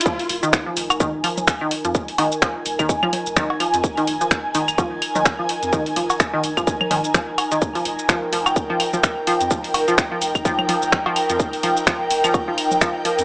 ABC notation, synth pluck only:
X:1
M:4/4
L:1/16
Q:"Swing 16ths" 1/4=127
K:Fm
V:1 name="Synth pluck" clef=bass
F, z2 E, z F, z2 E, z F, z2 E, z F, | z2 E, z F, z2 E, z F, z2 E, z F, z | z E, z F, z2 E, z F, z2 E, z F, z2 | E, z F, z2 E, z F, z2 E, z F, z2 E, |
z F, z2 F, z F, z2 F, z F, z2 F, z | F, z2 F, z F, z2 F, z F, z2 F, z F, | z2 F, z F, z2 F, z F, z2 F, z F, z |]